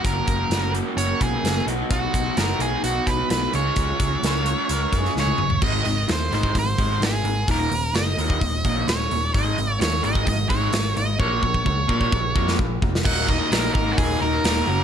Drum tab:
CC |----------------|----------------|----------------|x---------------|
HH |x-x-x-x-x-x-x-x-|x-x-x-x-x-x-x-x-|x-x-x-x-x-x-----|--o-o-o-o-o-o-o-|
SD |----o-------o---|----o-------o---|----o------oo---|----o-o-----o---|
T1 |----------------|----------------|-------------o--|----------------|
T2 |----------------|----------------|--------------o-|----------------|
FT |----------------|----------------|---------------o|----------------|
BD |o-o-------o-----|o-o-------o-----|o-o-------o-----|o------oo-o-----|

CC |----------------|----------------|----------------|x---------------|
HH |o-o-o-o-o-o-o-o-|o-o-o-o-o-o-o-o-|----------------|----o---o---o---|
SD |----o-------o---|----o-------o---|-----------o---o|----o-------o---|
T1 |----------------|----------------|----------------|----------------|
T2 |----------------|----------------|----------------|----------------|
FT |----------------|----------------|----------------|----------------|
BD |o------oo-o-----|o------oo-o-----|o-ooo-ooo-o-o-o-|o-o---o-o-------|